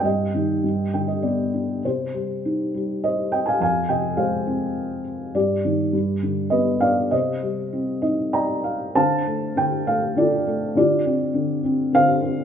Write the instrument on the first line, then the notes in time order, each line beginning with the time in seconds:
felt piano
0.00 G2 G5
0.05 D#5
0.34 D#3
0.64 G2
0.94 D3 G5
1.08 D#5
1.22 B3 D5
1.54 D4
1.84 C3 G4 C5
2.14 G3
2.45 D#4
2.74 G3
3.04 C5 D#5
3.32 D#5 G5
3.46 F5 G#5
3.60 F2 F5 G#5
3.89 C3 D#5 G5
4.17 G#3 C5 F5
4.47 C4
5.35 G2 G4 D5
5.65 D#3
5.93 G2
6.23 D3
6.50 B3 B4 D#5
6.81 D4 D5 F5
7.11 C3 C5 D#5
7.43 G3
7.73 C4
8.02 D#4 D#5
8.33 D5 D#5 G5 A#5
8.64 F5
8.95 D3 C5 F5 A5
9.27 A3
9.56 D3 G5
9.87 A3 F5
10.16 D3 F4 A4 D5
10.47 A3
10.75 D3 F4 G4 D5
11.05 C4
11.34 D3
11.64 C4
11.93 D3 C5 F5
12.21 C4